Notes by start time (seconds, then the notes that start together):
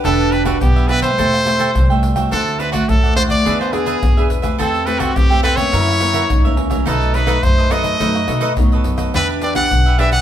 Already playing: D4 G4 B4
0.04 E1 E3 D4 G4 A4 B4 E5, pandeiro, tamborim, shaker, surdo
0.20 pandeiro, shaker
0.32 D4 G4 B4 E5, pandeiro
0.45 B3 D4 F#4 G4 B4 E5, pandeiro, tamborim, shaker, surdo
0.61 B1 B2 B3 G4, pandeiro, tamborim, shaker, surdo
0.76 G4 B4 E5, pandeiro, shaker
0.88 B3 D4 G4 B4 E5, pandeiro, tamborim, surdo
1.02 G4 B4 C5 E5, pandeiro, shaker, surdo
1.11 G#3
1.18 E1 E3 A3 C4 G4 A4 C5 E5 G5, pandeiro, shaker, surdo
1.34 pandeiro, tamborim, shaker
1.45 A3 C4 G4 A4 C5 E5 G5, pandeiro, tamborim, shaker
1.59 A4 C5 E5 G5, pandeiro, shaker
1.75 C2 E3 G3, pandeiro, tamborim, shaker, surdo
1.90 A3 C4 G4 C5 E5 G5, pandeiro, shaker
2.03 pandeiro, shaker, surdo
2.16 A3 C4 F#4 C5 E5 G5, pandeiro, tamborim, shaker, surdo
2.31 D2 D3 A3 D4 A4 C5 D5 F#5, pandeiro, tamborim, shaker, surdo
2.47 pandeiro, shaker
2.59 D4 B4 C5 D5 F#5, pandeiro, shaker
2.72 A3 C4 D4 F#4 C5 D5 F#5, pandeiro, tamborim, shaker, surdo
2.89 D#2 A2 A4, pandeiro, tamborim, shaker, surdo
3.03 C5 D5 F#5, pandeiro, shaker
3.15 A3 C4 D4 F#4 C5 D5 F#5, pandeiro, tamborim, surdo
3.29 C5 D5 F#5, pandeiro, shaker, surdo
3.45 E2 E3 B3 D4 G#4 B4 E5, pandeiro, shaker, surdo
3.61 C5, pandeiro, tamborim, shaker
3.73 B3 D4 G#4 B4 E5, pandeiro, tamborim
3.86 D4 G#4 B4 E5, pandeiro, shaker
4.02 E2 B2, pandeiro, tamborim, shaker, surdo
4.17 B3 D4 G#4 B4 E5, pandeiro, shaker
4.30 pandeiro, shaker, surdo
4.42 A3 C4 G4 G#4 B4 E5, pandeiro, tamborim, shaker, surdo
4.58 E2 E3 C4 A4 C5 E5 G5, pandeiro, tamborim, shaker, surdo
4.75 pandeiro, shaker
4.86 A3 C4 G4 A4 B4 C5 E5 G5, pandeiro, shaker
4.99 F#4 A4 C5 E5 G5, pandeiro, tamborim, shaker, surdo
5.16 E2 E3 G4, pandeiro, tamborim, shaker, surdo
5.30 A3 C4 G4 C5 E5 G5, pandeiro, shaker
5.43 A4 B4 C5 E5 G5, pandeiro, tamborim, shaker, surdo
5.56 E3 A#3 C#4 C5 C#5 E5 G5, pandeiro, shaker, surdo
5.72 F#2 E4 F#4 A#4 C#5 E5, pandeiro, shaker, surdo
5.88 pandeiro, tamborim, shaker
6.00 E3 A#3 C#4 F#4 A#4 C#5 E5, pandeiro, tamborim, shaker
6.13 F#4 A#4 C#5 E5, pandeiro, shaker
6.30 C#2 C#3 D#4, pandeiro, tamborim, shaker, surdo
6.45 E3 A#3 C#4 A#4 C#5 E5, pandeiro, shaker
6.57 C#4, pandeiro
6.70 F#3 A3 D#4 A#4 C#5 E5, pandeiro, tamborim, shaker, surdo
6.86 B1 B2 A3 D#4 A4 B4 D#5, pandeiro, tamborim, shaker, surdo
7.02 pandeiro, shaker
7.13 F#3 A3 D#4 A4 B4 D#5, pandeiro
7.26 F#3 A3 D#4 A4 B4 D#5, pandeiro, tamborim, shaker, surdo
7.43 F#2 C5, pandeiro, tamborim, shaker, surdo
7.58 A4 B4 D#5, pandeiro, shaker
7.70 F#3 A3 D#4 A4 B4 D#5, pandeiro, tamborim, shaker, surdo
7.83 A4 B4 D#5, pandeiro, shaker, surdo
7.99 F#2 B2 F#3 A3 D#4 A4 B4 D#5, pandeiro, shaker, surdo
8.15 pandeiro, tamborim, shaker
8.27 B2 F#3 A3 D#4 A4 B4 D#5, pandeiro, tamborim, shaker
8.41 D#4 A4 B4 D#5, pandeiro, shaker
8.57 F#2 A2 F#3 A3 B3 D#4, pandeiro, tamborim, shaker, surdo
8.72 A4 B4 D#5, pandeiro, shaker
8.84 F#2, pandeiro, shaker
8.98 A4 B4 D#5, pandeiro, tamborim, shaker, surdo
9.14 E2 E3 B3 D4 G4 B4 E5, pandeiro, tamborim, shaker, surdo
9.29 pandeiro, shaker
9.42 D4 G4 B4 D5 E5, pandeiro, shaker
9.55 B3 D4 G4 B4 E5 F#5, pandeiro, tamborim, shaker, surdo
9.71 B1 B2, pandeiro, tamborim, shaker, surdo
9.86 G4 B4 E5, pandeiro, shaker
9.98 B3 D4 G4 B4 E5, pandeiro, tamborim, surdo
10.11 G4 B4 E5 F#5, pandeiro, shaker, surdo